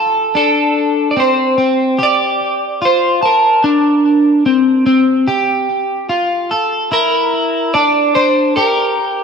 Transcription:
0.00 0.35 A4 medium
0.35 1.16 D4 medium
0.35 1.11 A4 medium
1.11 1.17 D5 medium
1.17 1.57 C4 medium
1.17 2.03 C5 loud
1.58 1.99 C4 medium
1.99 2.81 G4 medium
2.03 2.85 D5 loud
2.82 3.22 F4 medium
2.82 3.22 C5 medium
3.23 4.43 A#4 medium
3.23 3.63 A5 medium
3.64 4.45 D4 medium
4.46 4.85 C4 medium
4.86 5.28 C4 medium
5.28 6.09 G4 medium
6.09 6.51 F4 medium
6.51 6.91 A4 medium
6.92 7.74 E4 medium
6.92 7.73 A#4 loud
7.74 8.15 D4 medium
7.74 8.15 D5 loud
8.15 8.57 D4 medium
8.15 8.56 C5 loud
8.56 9.24 G4 medium
8.56 9.24 A#4 medium

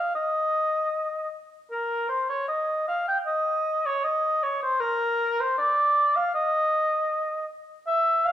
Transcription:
0.00 0.14 F5 medium
0.15 1.30 D#5 medium
1.71 2.07 A#4 medium
2.09 2.29 C5 medium
2.29 2.48 C#5 medium
2.48 2.87 D#5 medium
2.88 3.07 F5 medium
3.08 3.17 G5 medium
3.26 3.87 D#5 medium
3.86 4.05 C#5 medium
4.04 4.44 D#5 medium
4.43 4.62 C#5 medium
4.62 4.81 C5 medium
4.80 5.41 A#4 medium
5.40 5.57 C5 medium
5.58 6.17 D5 medium
6.16 6.33 F5 medium
6.34 7.47 D#5 medium
7.87 8.27 E5 medium
8.25 8.32 F5 medium

